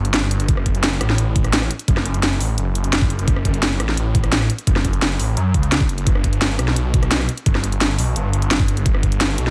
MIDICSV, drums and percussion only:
0, 0, Header, 1, 2, 480
1, 0, Start_track
1, 0, Tempo, 348837
1, 667, Time_signature, 4, 2, 24, 8
1, 13076, End_track
2, 0, Start_track
2, 0, Title_t, "Drums"
2, 67, Note_on_c, 9, 42, 39
2, 188, Note_off_c, 9, 42, 0
2, 188, Note_on_c, 9, 38, 113
2, 188, Note_on_c, 9, 42, 92
2, 325, Note_off_c, 9, 38, 0
2, 325, Note_off_c, 9, 42, 0
2, 428, Note_on_c, 9, 42, 67
2, 548, Note_off_c, 9, 42, 0
2, 548, Note_on_c, 9, 42, 39
2, 667, Note_off_c, 9, 42, 0
2, 667, Note_on_c, 9, 42, 104
2, 668, Note_on_c, 9, 36, 122
2, 787, Note_on_c, 9, 37, 38
2, 805, Note_off_c, 9, 36, 0
2, 805, Note_off_c, 9, 42, 0
2, 907, Note_on_c, 9, 42, 68
2, 908, Note_on_c, 9, 36, 61
2, 925, Note_off_c, 9, 37, 0
2, 1027, Note_off_c, 9, 42, 0
2, 1027, Note_on_c, 9, 42, 37
2, 1045, Note_off_c, 9, 36, 0
2, 1148, Note_off_c, 9, 42, 0
2, 1148, Note_on_c, 9, 38, 127
2, 1148, Note_on_c, 9, 42, 99
2, 1285, Note_off_c, 9, 38, 0
2, 1285, Note_off_c, 9, 42, 0
2, 1388, Note_on_c, 9, 37, 61
2, 1388, Note_on_c, 9, 42, 74
2, 1508, Note_on_c, 9, 38, 39
2, 1525, Note_off_c, 9, 37, 0
2, 1525, Note_off_c, 9, 42, 0
2, 1628, Note_on_c, 9, 42, 103
2, 1646, Note_off_c, 9, 38, 0
2, 1765, Note_off_c, 9, 42, 0
2, 1867, Note_on_c, 9, 42, 70
2, 1868, Note_on_c, 9, 36, 107
2, 1987, Note_off_c, 9, 42, 0
2, 1987, Note_on_c, 9, 37, 36
2, 1987, Note_on_c, 9, 42, 38
2, 2005, Note_off_c, 9, 36, 0
2, 2108, Note_off_c, 9, 42, 0
2, 2108, Note_on_c, 9, 38, 120
2, 2108, Note_on_c, 9, 42, 96
2, 2125, Note_off_c, 9, 37, 0
2, 2228, Note_on_c, 9, 37, 39
2, 2245, Note_off_c, 9, 38, 0
2, 2245, Note_off_c, 9, 42, 0
2, 2348, Note_on_c, 9, 42, 69
2, 2366, Note_off_c, 9, 37, 0
2, 2468, Note_off_c, 9, 42, 0
2, 2468, Note_on_c, 9, 42, 38
2, 2588, Note_off_c, 9, 42, 0
2, 2588, Note_on_c, 9, 36, 125
2, 2588, Note_on_c, 9, 42, 100
2, 2708, Note_on_c, 9, 37, 38
2, 2708, Note_on_c, 9, 38, 37
2, 2726, Note_off_c, 9, 36, 0
2, 2726, Note_off_c, 9, 42, 0
2, 2828, Note_on_c, 9, 42, 69
2, 2846, Note_off_c, 9, 37, 0
2, 2846, Note_off_c, 9, 38, 0
2, 2949, Note_off_c, 9, 42, 0
2, 2949, Note_on_c, 9, 42, 38
2, 3068, Note_off_c, 9, 42, 0
2, 3068, Note_on_c, 9, 38, 127
2, 3068, Note_on_c, 9, 42, 98
2, 3206, Note_off_c, 9, 38, 0
2, 3206, Note_off_c, 9, 42, 0
2, 3309, Note_on_c, 9, 46, 80
2, 3446, Note_off_c, 9, 46, 0
2, 3548, Note_on_c, 9, 42, 97
2, 3686, Note_off_c, 9, 42, 0
2, 3788, Note_on_c, 9, 42, 70
2, 3909, Note_off_c, 9, 42, 0
2, 3909, Note_on_c, 9, 42, 36
2, 4029, Note_off_c, 9, 42, 0
2, 4029, Note_on_c, 9, 38, 125
2, 4029, Note_on_c, 9, 42, 88
2, 4148, Note_on_c, 9, 36, 114
2, 4166, Note_off_c, 9, 38, 0
2, 4166, Note_off_c, 9, 42, 0
2, 4268, Note_on_c, 9, 42, 68
2, 4286, Note_off_c, 9, 36, 0
2, 4389, Note_off_c, 9, 42, 0
2, 4389, Note_on_c, 9, 42, 39
2, 4508, Note_on_c, 9, 36, 127
2, 4509, Note_off_c, 9, 42, 0
2, 4509, Note_on_c, 9, 42, 97
2, 4629, Note_on_c, 9, 37, 38
2, 4646, Note_off_c, 9, 36, 0
2, 4646, Note_off_c, 9, 42, 0
2, 4748, Note_on_c, 9, 36, 65
2, 4749, Note_on_c, 9, 42, 66
2, 4766, Note_off_c, 9, 37, 0
2, 4869, Note_off_c, 9, 42, 0
2, 4869, Note_on_c, 9, 42, 35
2, 4886, Note_off_c, 9, 36, 0
2, 4988, Note_off_c, 9, 42, 0
2, 4988, Note_on_c, 9, 38, 127
2, 4988, Note_on_c, 9, 42, 94
2, 5126, Note_off_c, 9, 38, 0
2, 5126, Note_off_c, 9, 42, 0
2, 5228, Note_on_c, 9, 37, 59
2, 5228, Note_on_c, 9, 42, 67
2, 5348, Note_on_c, 9, 38, 40
2, 5366, Note_off_c, 9, 37, 0
2, 5366, Note_off_c, 9, 42, 0
2, 5469, Note_on_c, 9, 42, 98
2, 5486, Note_off_c, 9, 38, 0
2, 5606, Note_off_c, 9, 42, 0
2, 5708, Note_on_c, 9, 36, 108
2, 5708, Note_on_c, 9, 42, 63
2, 5829, Note_off_c, 9, 42, 0
2, 5829, Note_on_c, 9, 37, 34
2, 5829, Note_on_c, 9, 42, 36
2, 5846, Note_off_c, 9, 36, 0
2, 5948, Note_off_c, 9, 42, 0
2, 5948, Note_on_c, 9, 38, 124
2, 5948, Note_on_c, 9, 42, 94
2, 5966, Note_off_c, 9, 37, 0
2, 6069, Note_on_c, 9, 37, 38
2, 6086, Note_off_c, 9, 38, 0
2, 6086, Note_off_c, 9, 42, 0
2, 6189, Note_on_c, 9, 42, 66
2, 6206, Note_off_c, 9, 37, 0
2, 6308, Note_off_c, 9, 42, 0
2, 6308, Note_on_c, 9, 42, 36
2, 6428, Note_off_c, 9, 42, 0
2, 6428, Note_on_c, 9, 36, 122
2, 6428, Note_on_c, 9, 42, 92
2, 6548, Note_on_c, 9, 37, 37
2, 6548, Note_on_c, 9, 38, 40
2, 6566, Note_off_c, 9, 36, 0
2, 6566, Note_off_c, 9, 42, 0
2, 6668, Note_on_c, 9, 36, 60
2, 6668, Note_on_c, 9, 42, 63
2, 6686, Note_off_c, 9, 37, 0
2, 6686, Note_off_c, 9, 38, 0
2, 6789, Note_off_c, 9, 42, 0
2, 6789, Note_on_c, 9, 42, 35
2, 6806, Note_off_c, 9, 36, 0
2, 6908, Note_off_c, 9, 42, 0
2, 6908, Note_on_c, 9, 38, 127
2, 6908, Note_on_c, 9, 42, 92
2, 7046, Note_off_c, 9, 38, 0
2, 7046, Note_off_c, 9, 42, 0
2, 7148, Note_on_c, 9, 46, 81
2, 7286, Note_off_c, 9, 46, 0
2, 7388, Note_on_c, 9, 42, 91
2, 7526, Note_off_c, 9, 42, 0
2, 7628, Note_on_c, 9, 36, 65
2, 7628, Note_on_c, 9, 42, 65
2, 7748, Note_off_c, 9, 42, 0
2, 7748, Note_on_c, 9, 42, 34
2, 7766, Note_off_c, 9, 36, 0
2, 7868, Note_off_c, 9, 42, 0
2, 7868, Note_on_c, 9, 38, 118
2, 7868, Note_on_c, 9, 42, 86
2, 7988, Note_on_c, 9, 36, 112
2, 8006, Note_off_c, 9, 38, 0
2, 8006, Note_off_c, 9, 42, 0
2, 8108, Note_on_c, 9, 42, 61
2, 8126, Note_off_c, 9, 36, 0
2, 8228, Note_off_c, 9, 42, 0
2, 8228, Note_on_c, 9, 42, 35
2, 8347, Note_off_c, 9, 42, 0
2, 8347, Note_on_c, 9, 42, 96
2, 8348, Note_on_c, 9, 36, 117
2, 8468, Note_on_c, 9, 37, 35
2, 8485, Note_off_c, 9, 42, 0
2, 8486, Note_off_c, 9, 36, 0
2, 8587, Note_on_c, 9, 42, 65
2, 8588, Note_on_c, 9, 36, 59
2, 8605, Note_off_c, 9, 37, 0
2, 8707, Note_off_c, 9, 42, 0
2, 8707, Note_on_c, 9, 42, 34
2, 8726, Note_off_c, 9, 36, 0
2, 8827, Note_off_c, 9, 42, 0
2, 8827, Note_on_c, 9, 38, 125
2, 8827, Note_on_c, 9, 42, 89
2, 8965, Note_off_c, 9, 38, 0
2, 8965, Note_off_c, 9, 42, 0
2, 9068, Note_on_c, 9, 37, 55
2, 9068, Note_on_c, 9, 42, 68
2, 9188, Note_on_c, 9, 38, 39
2, 9205, Note_off_c, 9, 37, 0
2, 9205, Note_off_c, 9, 42, 0
2, 9307, Note_on_c, 9, 42, 94
2, 9325, Note_off_c, 9, 38, 0
2, 9445, Note_off_c, 9, 42, 0
2, 9548, Note_on_c, 9, 36, 110
2, 9548, Note_on_c, 9, 42, 67
2, 9668, Note_off_c, 9, 42, 0
2, 9668, Note_on_c, 9, 37, 33
2, 9668, Note_on_c, 9, 42, 36
2, 9686, Note_off_c, 9, 36, 0
2, 9788, Note_off_c, 9, 42, 0
2, 9788, Note_on_c, 9, 38, 121
2, 9788, Note_on_c, 9, 42, 89
2, 9806, Note_off_c, 9, 37, 0
2, 9908, Note_on_c, 9, 37, 36
2, 9926, Note_off_c, 9, 38, 0
2, 9926, Note_off_c, 9, 42, 0
2, 10028, Note_on_c, 9, 42, 63
2, 10045, Note_off_c, 9, 37, 0
2, 10148, Note_off_c, 9, 42, 0
2, 10148, Note_on_c, 9, 42, 36
2, 10267, Note_off_c, 9, 42, 0
2, 10267, Note_on_c, 9, 42, 94
2, 10268, Note_on_c, 9, 36, 121
2, 10388, Note_on_c, 9, 37, 37
2, 10388, Note_on_c, 9, 38, 36
2, 10405, Note_off_c, 9, 36, 0
2, 10405, Note_off_c, 9, 42, 0
2, 10508, Note_on_c, 9, 42, 66
2, 10525, Note_off_c, 9, 37, 0
2, 10525, Note_off_c, 9, 38, 0
2, 10628, Note_off_c, 9, 42, 0
2, 10628, Note_on_c, 9, 42, 37
2, 10748, Note_off_c, 9, 42, 0
2, 10748, Note_on_c, 9, 38, 118
2, 10748, Note_on_c, 9, 42, 97
2, 10885, Note_off_c, 9, 38, 0
2, 10885, Note_off_c, 9, 42, 0
2, 10988, Note_on_c, 9, 46, 87
2, 11125, Note_off_c, 9, 46, 0
2, 11228, Note_on_c, 9, 42, 93
2, 11366, Note_off_c, 9, 42, 0
2, 11468, Note_on_c, 9, 42, 65
2, 11588, Note_off_c, 9, 42, 0
2, 11588, Note_on_c, 9, 42, 37
2, 11708, Note_off_c, 9, 42, 0
2, 11708, Note_on_c, 9, 38, 115
2, 11708, Note_on_c, 9, 42, 91
2, 11828, Note_on_c, 9, 36, 106
2, 11846, Note_off_c, 9, 38, 0
2, 11846, Note_off_c, 9, 42, 0
2, 11948, Note_on_c, 9, 42, 67
2, 11965, Note_off_c, 9, 36, 0
2, 12068, Note_off_c, 9, 42, 0
2, 12068, Note_on_c, 9, 42, 36
2, 12188, Note_off_c, 9, 42, 0
2, 12188, Note_on_c, 9, 36, 112
2, 12188, Note_on_c, 9, 42, 104
2, 12308, Note_on_c, 9, 37, 37
2, 12325, Note_off_c, 9, 36, 0
2, 12326, Note_off_c, 9, 42, 0
2, 12428, Note_on_c, 9, 36, 55
2, 12428, Note_on_c, 9, 42, 65
2, 12446, Note_off_c, 9, 37, 0
2, 12548, Note_off_c, 9, 42, 0
2, 12548, Note_on_c, 9, 42, 40
2, 12566, Note_off_c, 9, 36, 0
2, 12668, Note_off_c, 9, 42, 0
2, 12668, Note_on_c, 9, 38, 117
2, 12668, Note_on_c, 9, 42, 101
2, 12806, Note_off_c, 9, 38, 0
2, 12806, Note_off_c, 9, 42, 0
2, 12908, Note_on_c, 9, 42, 72
2, 13028, Note_on_c, 9, 38, 35
2, 13046, Note_off_c, 9, 42, 0
2, 13076, Note_off_c, 9, 38, 0
2, 13076, End_track
0, 0, End_of_file